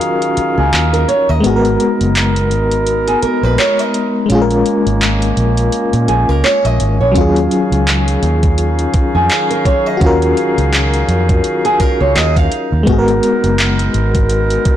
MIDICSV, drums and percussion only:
0, 0, Header, 1, 2, 480
1, 0, Start_track
1, 0, Key_signature, -6, "minor"
1, 0, Tempo, 714286
1, 968, Time_signature, 4, 2, 24, 8
1, 9923, End_track
2, 0, Start_track
2, 0, Title_t, "Drums"
2, 8, Note_on_c, 9, 42, 61
2, 75, Note_off_c, 9, 42, 0
2, 147, Note_on_c, 9, 42, 46
2, 215, Note_off_c, 9, 42, 0
2, 249, Note_on_c, 9, 42, 56
2, 316, Note_off_c, 9, 42, 0
2, 489, Note_on_c, 9, 42, 66
2, 496, Note_on_c, 9, 39, 114
2, 556, Note_off_c, 9, 42, 0
2, 563, Note_off_c, 9, 39, 0
2, 630, Note_on_c, 9, 42, 47
2, 697, Note_off_c, 9, 42, 0
2, 731, Note_on_c, 9, 42, 55
2, 798, Note_off_c, 9, 42, 0
2, 969, Note_on_c, 9, 42, 74
2, 1036, Note_off_c, 9, 42, 0
2, 1108, Note_on_c, 9, 42, 44
2, 1175, Note_off_c, 9, 42, 0
2, 1209, Note_on_c, 9, 42, 62
2, 1276, Note_off_c, 9, 42, 0
2, 1349, Note_on_c, 9, 42, 45
2, 1417, Note_off_c, 9, 42, 0
2, 1447, Note_on_c, 9, 42, 67
2, 1452, Note_on_c, 9, 39, 108
2, 1515, Note_off_c, 9, 42, 0
2, 1519, Note_off_c, 9, 39, 0
2, 1588, Note_on_c, 9, 42, 49
2, 1655, Note_off_c, 9, 42, 0
2, 1687, Note_on_c, 9, 42, 44
2, 1754, Note_off_c, 9, 42, 0
2, 1824, Note_on_c, 9, 42, 52
2, 1892, Note_off_c, 9, 42, 0
2, 1926, Note_on_c, 9, 42, 63
2, 1993, Note_off_c, 9, 42, 0
2, 2067, Note_on_c, 9, 42, 46
2, 2134, Note_off_c, 9, 42, 0
2, 2167, Note_on_c, 9, 42, 55
2, 2234, Note_off_c, 9, 42, 0
2, 2407, Note_on_c, 9, 42, 65
2, 2414, Note_on_c, 9, 39, 112
2, 2474, Note_off_c, 9, 42, 0
2, 2481, Note_off_c, 9, 39, 0
2, 2548, Note_on_c, 9, 42, 46
2, 2615, Note_off_c, 9, 42, 0
2, 2649, Note_on_c, 9, 42, 58
2, 2716, Note_off_c, 9, 42, 0
2, 2888, Note_on_c, 9, 42, 74
2, 2955, Note_off_c, 9, 42, 0
2, 3028, Note_on_c, 9, 42, 48
2, 3095, Note_off_c, 9, 42, 0
2, 3129, Note_on_c, 9, 42, 62
2, 3197, Note_off_c, 9, 42, 0
2, 3270, Note_on_c, 9, 42, 43
2, 3338, Note_off_c, 9, 42, 0
2, 3368, Note_on_c, 9, 42, 67
2, 3373, Note_on_c, 9, 39, 110
2, 3435, Note_off_c, 9, 42, 0
2, 3440, Note_off_c, 9, 39, 0
2, 3508, Note_on_c, 9, 42, 48
2, 3575, Note_off_c, 9, 42, 0
2, 3609, Note_on_c, 9, 42, 45
2, 3676, Note_off_c, 9, 42, 0
2, 3746, Note_on_c, 9, 42, 54
2, 3813, Note_off_c, 9, 42, 0
2, 3846, Note_on_c, 9, 42, 60
2, 3914, Note_off_c, 9, 42, 0
2, 3986, Note_on_c, 9, 42, 44
2, 4054, Note_off_c, 9, 42, 0
2, 4087, Note_on_c, 9, 42, 56
2, 4155, Note_off_c, 9, 42, 0
2, 4327, Note_on_c, 9, 42, 65
2, 4334, Note_on_c, 9, 39, 114
2, 4394, Note_off_c, 9, 42, 0
2, 4401, Note_off_c, 9, 39, 0
2, 4469, Note_on_c, 9, 42, 47
2, 4536, Note_off_c, 9, 42, 0
2, 4569, Note_on_c, 9, 42, 59
2, 4636, Note_off_c, 9, 42, 0
2, 4808, Note_on_c, 9, 36, 109
2, 4808, Note_on_c, 9, 42, 79
2, 4875, Note_off_c, 9, 36, 0
2, 4875, Note_off_c, 9, 42, 0
2, 4948, Note_on_c, 9, 42, 45
2, 5015, Note_off_c, 9, 42, 0
2, 5049, Note_on_c, 9, 42, 60
2, 5116, Note_off_c, 9, 42, 0
2, 5191, Note_on_c, 9, 42, 44
2, 5258, Note_off_c, 9, 42, 0
2, 5289, Note_on_c, 9, 42, 67
2, 5294, Note_on_c, 9, 39, 109
2, 5356, Note_off_c, 9, 42, 0
2, 5361, Note_off_c, 9, 39, 0
2, 5429, Note_on_c, 9, 42, 50
2, 5496, Note_off_c, 9, 42, 0
2, 5528, Note_on_c, 9, 42, 47
2, 5595, Note_off_c, 9, 42, 0
2, 5665, Note_on_c, 9, 42, 55
2, 5666, Note_on_c, 9, 36, 90
2, 5732, Note_off_c, 9, 42, 0
2, 5733, Note_off_c, 9, 36, 0
2, 5765, Note_on_c, 9, 42, 64
2, 5832, Note_off_c, 9, 42, 0
2, 5905, Note_on_c, 9, 42, 45
2, 5972, Note_off_c, 9, 42, 0
2, 6005, Note_on_c, 9, 42, 55
2, 6008, Note_on_c, 9, 36, 86
2, 6072, Note_off_c, 9, 42, 0
2, 6075, Note_off_c, 9, 36, 0
2, 6247, Note_on_c, 9, 42, 64
2, 6254, Note_on_c, 9, 39, 114
2, 6314, Note_off_c, 9, 42, 0
2, 6321, Note_off_c, 9, 39, 0
2, 6388, Note_on_c, 9, 42, 48
2, 6455, Note_off_c, 9, 42, 0
2, 6487, Note_on_c, 9, 36, 98
2, 6489, Note_on_c, 9, 42, 56
2, 6555, Note_off_c, 9, 36, 0
2, 6556, Note_off_c, 9, 42, 0
2, 6728, Note_on_c, 9, 36, 118
2, 6728, Note_on_c, 9, 42, 76
2, 6795, Note_off_c, 9, 42, 0
2, 6796, Note_off_c, 9, 36, 0
2, 6869, Note_on_c, 9, 42, 46
2, 6936, Note_off_c, 9, 42, 0
2, 6969, Note_on_c, 9, 42, 64
2, 7037, Note_off_c, 9, 42, 0
2, 7110, Note_on_c, 9, 42, 44
2, 7178, Note_off_c, 9, 42, 0
2, 7209, Note_on_c, 9, 42, 68
2, 7214, Note_on_c, 9, 39, 114
2, 7276, Note_off_c, 9, 42, 0
2, 7281, Note_off_c, 9, 39, 0
2, 7349, Note_on_c, 9, 42, 47
2, 7416, Note_off_c, 9, 42, 0
2, 7450, Note_on_c, 9, 42, 45
2, 7517, Note_off_c, 9, 42, 0
2, 7588, Note_on_c, 9, 36, 87
2, 7588, Note_on_c, 9, 42, 56
2, 7655, Note_off_c, 9, 36, 0
2, 7655, Note_off_c, 9, 42, 0
2, 7688, Note_on_c, 9, 42, 63
2, 7755, Note_off_c, 9, 42, 0
2, 7828, Note_on_c, 9, 42, 44
2, 7895, Note_off_c, 9, 42, 0
2, 7928, Note_on_c, 9, 42, 55
2, 7930, Note_on_c, 9, 36, 92
2, 7995, Note_off_c, 9, 42, 0
2, 7997, Note_off_c, 9, 36, 0
2, 8168, Note_on_c, 9, 42, 66
2, 8175, Note_on_c, 9, 39, 114
2, 8235, Note_off_c, 9, 42, 0
2, 8242, Note_off_c, 9, 39, 0
2, 8308, Note_on_c, 9, 36, 84
2, 8310, Note_on_c, 9, 42, 48
2, 8376, Note_off_c, 9, 36, 0
2, 8377, Note_off_c, 9, 42, 0
2, 8411, Note_on_c, 9, 42, 61
2, 8478, Note_off_c, 9, 42, 0
2, 8649, Note_on_c, 9, 36, 110
2, 8649, Note_on_c, 9, 42, 80
2, 8716, Note_off_c, 9, 36, 0
2, 8717, Note_off_c, 9, 42, 0
2, 8789, Note_on_c, 9, 42, 45
2, 8856, Note_off_c, 9, 42, 0
2, 8890, Note_on_c, 9, 42, 64
2, 8957, Note_off_c, 9, 42, 0
2, 9031, Note_on_c, 9, 42, 44
2, 9098, Note_off_c, 9, 42, 0
2, 9129, Note_on_c, 9, 42, 67
2, 9134, Note_on_c, 9, 39, 112
2, 9196, Note_off_c, 9, 42, 0
2, 9201, Note_off_c, 9, 39, 0
2, 9269, Note_on_c, 9, 42, 50
2, 9336, Note_off_c, 9, 42, 0
2, 9369, Note_on_c, 9, 42, 47
2, 9436, Note_off_c, 9, 42, 0
2, 9507, Note_on_c, 9, 36, 81
2, 9507, Note_on_c, 9, 42, 57
2, 9574, Note_off_c, 9, 42, 0
2, 9575, Note_off_c, 9, 36, 0
2, 9606, Note_on_c, 9, 42, 62
2, 9673, Note_off_c, 9, 42, 0
2, 9747, Note_on_c, 9, 42, 47
2, 9814, Note_off_c, 9, 42, 0
2, 9847, Note_on_c, 9, 42, 57
2, 9849, Note_on_c, 9, 36, 89
2, 9914, Note_off_c, 9, 42, 0
2, 9916, Note_off_c, 9, 36, 0
2, 9923, End_track
0, 0, End_of_file